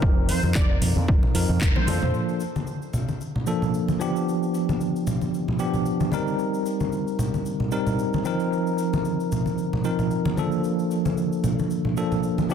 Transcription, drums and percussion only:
0.02 kick loud
0.29 open hi-hat loud
0.43 high conga medium
0.55 kick loud
0.55 clap loud
0.82 open hi-hat loud
0.82 low conga loud
0.97 high conga medium
1.08 kick loud
1.23 low conga medium
1.35 open hi-hat loud
1.49 low conga medium
1.61 kick loud
1.61 clap loud
1.76 high tom medium
1.76 high conga medium
1.87 open hi-hat loud
1.87 mid tom medium
1.87 high conga medium
2.03 mid tom medium
2.14 cabasa soft
2.29 cabasa soft
2.40 cabasa medium
2.56 high conga medium
2.56 cabasa soft
2.67 cabasa soft
2.82 cabasa soft
2.93 low conga medium
2.93 cabasa medium
3.08 high conga medium
3.08 cabasa soft
3.21 cabasa soft
3.36 low conga medium
3.46 cabasa medium
3.62 low conga medium
3.62 cabasa soft
3.74 cabasa soft
3.88 high conga medium
3.88 cabasa soft
4.01 cabasa medium
4.16 cabasa soft
4.29 cabasa soft
4.43 cabasa soft
4.54 cabasa medium
4.69 high conga medium
4.69 cabasa soft
4.81 cabasa soft
4.96 cabasa soft
5.07 low conga medium
5.07 cabasa medium
5.21 high conga medium
5.21 cabasa soft
5.34 cabasa soft
5.48 low conga medium
5.59 cabasa medium
5.74 low conga medium
5.74 cabasa soft
5.86 cabasa soft
6.00 high conga medium
6.00 cabasa soft
6.12 high conga medium
6.12 cabasa medium
6.27 cabasa soft
6.39 cabasa soft
6.54 cabasa soft
6.66 cabasa medium
6.80 high conga medium
6.80 cabasa soft
6.92 cabasa soft
7.08 cabasa soft
7.19 low conga medium
7.19 cabasa medium
7.34 high conga medium
7.34 cabasa soft
7.46 cabasa soft
7.60 low conga medium
7.72 cabasa medium
7.87 low conga medium
7.87 cabasa soft
7.99 cabasa soft
8.13 high conga medium
8.13 cabasa soft
8.25 cabasa medium
8.40 cabasa soft
8.53 cabasa soft
8.67 cabasa soft
8.78 cabasa medium
8.93 high conga medium
8.93 cabasa soft
9.05 cabasa soft
9.20 cabasa soft
9.32 low conga medium
9.32 cabasa medium
9.46 high conga medium
9.46 cabasa soft
9.58 cabasa soft
9.73 low conga medium
9.84 cabasa medium
9.99 low conga medium
9.99 cabasa soft
10.11 cabasa soft
10.25 high conga medium
10.25 cabasa soft
10.37 high conga medium
10.37 cabasa medium
10.52 cabasa soft
10.64 cabasa soft
10.79 cabasa soft
10.91 cabasa medium
11.05 high conga medium
11.05 cabasa soft
11.17 cabasa soft
11.33 cabasa soft
11.44 low conga medium
11.44 cabasa medium
11.59 high conga medium
11.59 cabasa soft
11.70 cabasa soft
11.85 low conga medium
11.97 cabasa medium
12.12 low conga medium
12.12 cabasa soft
12.23 cabasa soft
12.38 high conga medium
12.38 cabasa soft
12.50 cabasa medium

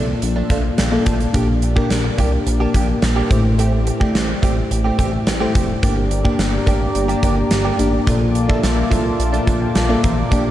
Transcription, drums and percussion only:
0.22 closed hi-hat medium
0.50 kick medium
0.50 closed hi-hat medium
0.78 snare loud
0.78 closed hi-hat medium
1.06 kick medium
1.06 closed hi-hat medium
1.20 closed hi-hat soft
1.34 kick loud
1.34 closed hi-hat medium
1.62 closed hi-hat medium
1.77 kick medium
1.90 snare medium
1.90 closed hi-hat medium
2.18 kick medium
2.18 closed hi-hat medium
2.47 closed hi-hat medium
2.74 kick medium
2.74 closed hi-hat medium
3.02 snare loud
3.02 closed hi-hat medium
3.31 kick loud
3.31 closed hi-hat medium
3.59 closed hi-hat medium
3.87 closed hi-hat medium
4.01 kick medium
4.15 snare medium
4.15 closed hi-hat medium
4.43 kick medium
4.43 closed hi-hat medium
4.71 closed hi-hat medium
4.99 kick medium
4.99 closed hi-hat medium
5.27 snare loud
5.27 closed hi-hat medium
5.55 kick medium
5.55 closed hi-hat medium
5.83 kick loud
5.83 closed hi-hat medium
6.11 closed hi-hat medium
6.25 kick medium
6.39 snare medium
6.39 closed hi-hat medium
6.67 kick medium
6.67 closed hi-hat medium
6.95 closed hi-hat medium
7.09 closed hi-hat soft
7.23 kick medium
7.23 closed hi-hat medium
7.51 snare loud
7.51 closed hi-hat medium
7.79 closed hi-hat medium
8.07 kick loud
8.07 closed hi-hat medium
8.35 closed hi-hat medium
8.50 kick medium
8.63 snare loud
8.63 closed hi-hat medium
8.92 kick medium
8.92 closed hi-hat medium
9.20 closed hi-hat medium
9.34 closed hi-hat soft
9.47 kick medium
9.47 closed hi-hat medium
9.75 snare loud
9.75 closed hi-hat medium
10.04 kick loud
10.04 closed hi-hat medium
10.32 kick loud
10.32 closed hi-hat medium

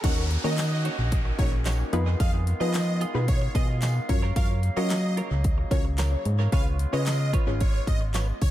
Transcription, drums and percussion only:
0.04 kick loud
0.04 closed hi-hat loud
0.04 crash loud
0.31 closed hi-hat medium
0.58 snare medium
0.58 clap loud
0.58 closed hi-hat medium
0.58 tambourine medium
0.85 closed hi-hat medium
1.12 kick medium
1.12 closed hi-hat loud
1.39 kick loud
1.39 closed hi-hat medium
1.66 snare medium
1.66 clap loud
1.66 closed hi-hat loud
1.66 tambourine medium
1.93 closed hi-hat medium
2.20 kick loud
2.20 closed hi-hat medium
2.47 closed hi-hat medium
2.74 snare medium
2.74 clap loud
2.74 closed hi-hat medium
2.74 tambourine medium
3.01 closed hi-hat medium
3.28 kick medium
3.28 closed hi-hat loud
3.55 kick medium
3.55 closed hi-hat medium
3.82 snare medium
3.82 clap loud
3.82 closed hi-hat loud
3.82 tambourine medium
4.09 kick medium
4.09 closed hi-hat medium
4.36 kick loud
4.36 closed hi-hat loud
4.63 closed hi-hat medium
4.90 snare medium
4.90 clap loud
4.90 closed hi-hat medium
4.90 tambourine medium
5.17 closed hi-hat medium
5.44 kick medium
5.44 closed hi-hat medium
5.71 kick loud
5.71 closed hi-hat medium
5.98 snare medium
5.98 clap loud
5.98 closed hi-hat loud
5.98 tambourine medium
6.25 closed hi-hat medium
6.52 kick loud
6.52 closed hi-hat loud
6.79 closed hi-hat medium
7.06 snare medium
7.06 clap loud
7.06 closed hi-hat medium
7.06 tambourine medium
7.33 kick loud
7.33 closed hi-hat medium
7.61 kick medium
7.61 closed hi-hat loud
7.87 kick medium
7.87 closed hi-hat medium
8.14 snare medium
8.14 clap loud
8.14 closed hi-hat loud
8.14 tambourine medium
8.42 kick medium
8.42 open hi-hat medium

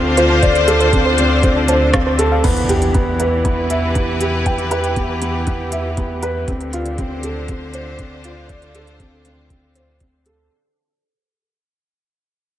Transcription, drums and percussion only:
0.17 closed hi-hat medium
0.43 kick loud
0.43 closed hi-hat soft
0.55 closed hi-hat soft
0.68 closed hi-hat medium
0.81 closed hi-hat soft
0.93 kick loud
0.93 closed hi-hat soft
1.18 closed hi-hat medium
1.43 kick loud
1.43 closed hi-hat soft
1.68 closed hi-hat medium
1.94 kick loud
1.94 cross-stick medium
1.94 closed hi-hat soft
2.19 closed hi-hat medium
2.44 kick medium
2.44 closed hi-hat soft
2.44 crash medium
2.57 closed hi-hat soft
2.69 closed hi-hat medium
2.82 closed hi-hat soft
2.94 kick loud
2.94 closed hi-hat soft
3.20 closed hi-hat medium
3.45 kick medium
3.45 closed hi-hat soft
3.70 closed hi-hat medium
3.95 kick medium
3.95 closed hi-hat soft
4.21 closed hi-hat medium
4.46 kick medium
4.46 closed hi-hat soft
4.58 closed hi-hat soft
4.71 closed hi-hat medium
4.84 closed hi-hat soft
4.96 kick loud
4.96 closed hi-hat soft
5.22 closed hi-hat medium
5.47 kick medium
5.47 closed hi-hat soft
5.72 closed hi-hat medium
5.97 kick medium
5.97 closed hi-hat soft
6.23 closed hi-hat medium
6.48 kick loud
6.48 closed hi-hat soft
6.61 closed hi-hat soft
6.73 closed hi-hat medium
6.86 closed hi-hat soft
6.98 kick medium
6.98 closed hi-hat soft
7.23 closed hi-hat medium
7.48 kick medium
7.48 closed hi-hat soft
7.74 closed hi-hat medium
7.99 kick medium
7.99 closed hi-hat soft
8.24 closed hi-hat medium
8.49 kick medium
8.49 closed hi-hat soft
8.62 closed hi-hat soft
8.75 closed hi-hat medium
8.87 closed hi-hat soft
9.00 kick medium
9.00 closed hi-hat soft
9.25 closed hi-hat soft
9.50 kick medium
9.50 closed hi-hat soft
9.75 closed hi-hat medium
10.00 kick medium
10.00 closed hi-hat soft
10.26 closed hi-hat soft

